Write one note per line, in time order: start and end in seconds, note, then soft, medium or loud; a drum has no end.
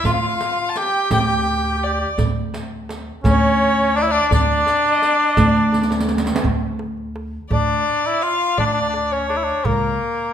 0.04 0.35 D2 medium
0.04 0.12 F4 loud
0.04 0.71 F5 medium
0.04 riq medium
0.04 darbuka dum medium
0.14 0.20 F4 medium
0.21 0.27 F4 medium
0.28 0.34 F4 medium
0.37 0.43 F4 medium
0.37 darbuka tek medium
0.41 0.50 F4 medium
0.41 riq medium
0.52 0.58 F4 medium
0.61 0.66 F4 medium
0.67 0.79 F4 medium
0.67 0.78 A5 medium
0.76 1.11 G4 medium
0.76 1.12 G5 medium
0.76 riq medium
0.76 darbuka tek medium
1.11 2.03 D2 loud
1.11 1.19 G4 medium
1.11 1.84 G5 medium
1.11 riq medium
1.11 darbuka dum loud
1.20 1.27 G4 medium
1.27 1.34 G4 medium
1.36 1.42 G4 medium
1.43 1.49 G4 medium
1.50 1.56 G4 medium
1.57 1.63 G4 medium
1.64 1.71 G4 soft
1.71 1.77 G4 medium
1.78 1.85 G4 medium
1.83 1.93 G4 medium
1.83 2.18 D5 medium
1.94 2.00 G4 medium
2.00 2.08 G4 medium
2.18 3.10 D2 medium
2.18 riq medium
2.18 darbuka dum loud
2.54 riq medium
2.54 darbuka tek medium
2.89 riq medium
2.89 darbuka tek medium
3.24 4.17 D2 loud
3.24 3.97 C#4 loud
3.24 3.98 C#5 medium
3.24 riq medium
3.24 darbuka dum medium
3.96 4.04 D4 loud
3.96 4.09 D5 medium
4.03 4.13 E4 medium
4.09 4.32 D4 medium
4.09 4.30 D5 medium
4.31 4.62 D2 medium
4.31 6.06 D4 loud
4.31 4.93 D5 medium
4.31 riq medium
4.31 darbuka dum medium
4.67 riq medium
4.67 darbuka tek medium
4.85 riq soft
4.85 darbuka ka soft
4.93 5.09 D#5 medium
5.02 riq medium
5.02 darbuka tek medium
5.09 5.28 D5 medium
5.28 5.44 D#5 medium
5.37 6.30 D2 loud
5.37 riq medium
5.37 darbuka dum loud
5.44 6.05 D5 medium
5.55 riq soft
5.55 darbuka ka soft
5.72 riq medium
5.72 darbuka tek medium
5.82 riq medium
5.82 darbuka ka medium
5.91 riq medium
5.91 darbuka tek medium
5.99 riq medium
5.99 darbuka ka medium
6.08 riq medium
6.08 darbuka tek medium
6.17 riq medium
6.17 darbuka ka medium
6.26 riq medium
6.26 darbuka tek medium
6.35 riq medium
6.35 darbuka ka medium
6.44 7.37 D2 medium
6.44 darbuka dum medium
6.79 darbuka tek medium
6.97 darbuka ka soft
7.16 darbuka tek medium
7.50 7.82 D2 medium
7.50 8.08 D4 medium
7.50 8.23 D5 medium
7.50 darbuka dum medium
8.06 8.24 E4 medium
8.22 8.58 F4 medium
8.22 8.59 F5 medium
8.22 darbuka ka soft
8.58 9.50 D2 medium
8.58 8.66 D4 medium
8.58 9.13 D5 medium
8.58 darbuka dum medium
8.66 8.73 D4 medium
8.74 8.80 D4 medium
8.82 8.88 D4 medium
8.89 8.95 D4 medium
8.94 9.14 D4 medium
8.94 darbuka tek medium
9.12 9.29 C#4 medium
9.12 9.66 C#5 medium
9.12 darbuka ka soft
9.29 9.39 D4 medium
9.29 darbuka tek medium
9.37 9.46 E4 medium
9.44 9.66 D4 medium
9.65 9.96 C#2 medium
9.65 10.33 A#3 medium
9.65 10.33 A#4 medium
9.65 darbuka dum medium